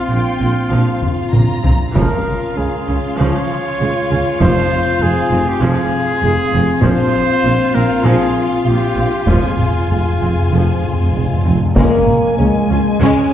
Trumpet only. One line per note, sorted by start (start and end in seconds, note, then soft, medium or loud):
0.00 1.34 F4 medium
1.95 2.59 A#4 medium
2.57 3.19 G#4 medium
3.20 4.39 C#5 medium
4.41 5.04 C5 loud
5.02 5.50 G#4 medium
5.48 5.64 G4 medium
5.62 6.82 G#4 loud
6.83 7.76 C5 loud
7.74 8.07 A#4 medium
8.05 8.45 G#4 medium
8.66 9.29 G4 medium
9.28 11.15 F4 medium